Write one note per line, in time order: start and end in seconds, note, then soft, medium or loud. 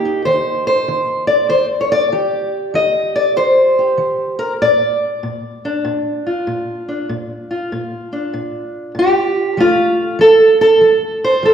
0.00 0.22 D#3 medium
0.00 3.16 A#3 medium
0.00 0.25 G4 medium
0.05 2.10 D#4 soft
0.25 0.84 D#3 medium
0.25 0.66 C5 medium
0.67 1.27 C5 loud
0.88 1.46 D#3 medium
1.27 1.49 D5 medium
1.49 2.07 D#3 medium
1.49 1.66 C5 loud
1.81 1.90 C#5 medium
1.92 2.75 D5 loud
2.12 2.70 D#3 medium
2.12 3.77 G4 soft
2.74 3.32 D#3 medium
2.74 3.15 D#5 medium
3.16 3.36 D5 medium
3.36 3.94 D#3 medium
3.36 4.61 C5 loud
3.79 4.38 G4 soft
3.98 4.56 D#3 medium
4.39 4.52 A#4 medium
4.62 5.19 A#2 medium
4.62 6.26 D5 loud
5.23 5.81 A#2 medium
5.65 6.87 D4 medium
5.85 6.42 A#2 medium
6.27 7.50 F4 soft
6.47 7.05 A#2 medium
6.88 7.07 D4 soft
7.09 7.67 A#2 medium
7.51 9.55 F4 soft
7.72 8.29 A#2 medium
8.13 9.55 D4 medium
8.33 8.91 A#2 medium
8.95 9.53 A#2 medium
8.99 9.59 G4 medium
9.57 10.15 F3 medium
9.57 11.54 A3 medium
9.57 10.20 F4 loud
10.19 10.77 F3 medium
10.19 10.60 A4 loud
10.61 11.44 A4 loud
10.81 11.39 F3 medium
11.24 11.54 C5 medium
11.43 11.54 F3 medium
11.43 11.54 A4 medium